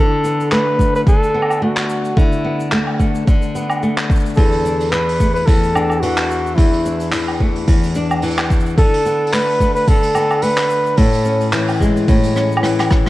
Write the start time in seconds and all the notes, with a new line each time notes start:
Already playing: D3 A3 D4 A4
0.24 B3, shaker
0.40 shaker
0.52 A3 B4, clap, shaker
0.79 A3, kick, shaker
0.96 B4, shaker
1.07 D3 A4, kick, shaker
1.23 shaker
1.34 B3
1.42 low woodblock
1.50 low woodblock, shaker
1.62 A3 F#4
1.77 clap, shaker
1.90 shaker
2.05 shaker
2.17 D3 E4, kick, shaker
2.32 shaker
2.45 B3
2.60 shaker
2.72 A3, clap, shaker
2.87 low woodblock
2.99 A3, kick, shaker
3.15 shaker
3.27 D3, kick, shaker
3.42 shaker
3.55 B3, shaker
3.70 low woodblock, shaker
3.83 A3, shaker
3.98 clap, shaker
4.10 kick, shaker
4.16 shaker
4.20 shaker
4.26 shaker
4.29 shaker
4.34 A4, kick, shaker
4.38 E2, open hi-hat, shaker
4.52 open hi-hat
4.65 D4, shaker
4.80 open hi-hat, shaker
4.91 E3 B4, clap, shaker
5.09 open hi-hat
5.20 A3, kick, shaker
5.34 B4, open hi-hat, shaker
5.46 E2 A4, kick, open hi-hat, shaker
5.63 open hi-hat, shaker
5.75 D4, low woodblock, shaker
5.90 low woodblock, shaker
6.01 E3 F#4, open hi-hat, shaker
6.18 clap, open hi-hat
6.31 shaker
6.47 shaker
6.55 E2 E4, kick, open hi-hat, shaker
6.74 open hi-hat
6.85 D4, shaker
7.00 open hi-hat, shaker
7.12 E3, clap, open hi-hat, shaker
7.28 low woodblock
7.40 A3, kick
7.56 open hi-hat
7.68 E2, kick, open hi-hat, shaker
7.83 open hi-hat, shaker
7.95 D4, shaker
8.11 low woodblock, shaker
8.22 E3, open hi-hat, shaker
8.30 open hi-hat
8.38 clap, low woodblock
8.50 kick, shaker
8.60 shaker
8.66 shaker
8.69 shaker
8.78 D3 A4, kick, open hi-hat, shaker
8.94 open hi-hat
9.05 B3, shaker
9.27 open hi-hat
9.33 A3 B4, clap, open hi-hat, shaker
9.49 open hi-hat
9.51 open hi-hat
9.54 open hi-hat
9.56 open hi-hat
9.58 A3, kick, open hi-hat, shaker
9.75 B4, open hi-hat, shaker
9.87 D3 A4, kick, open hi-hat, shaker
10.03 open hi-hat, shaker
10.15 B3, low woodblock, shaker
10.31 low woodblock, shaker
10.42 A3 B4, open hi-hat, shaker
10.57 clap, open hi-hat
10.70 shaker
10.86 shaker
10.97 A2 A4, kick, open hi-hat, shaker
11.13 open hi-hat, shaker
11.25 C#4, shaker
11.41 open hi-hat, shaker
11.52 E3, clap, open hi-hat, shaker
11.68 open hi-hat, low woodblock, shaker
11.80 G#3, kick, shaker
11.96 open hi-hat, shaker
12.08 A2, kick, open hi-hat, shaker
12.23 open hi-hat, shaker
12.35 C#4, cross-stick, shaker
12.52 shaker
12.57 low woodblock
12.63 E3, cross-stick, open hi-hat, shaker
12.79 cross-stick, open hi-hat, low woodblock, shaker
12.91 kick, cross-stick, shaker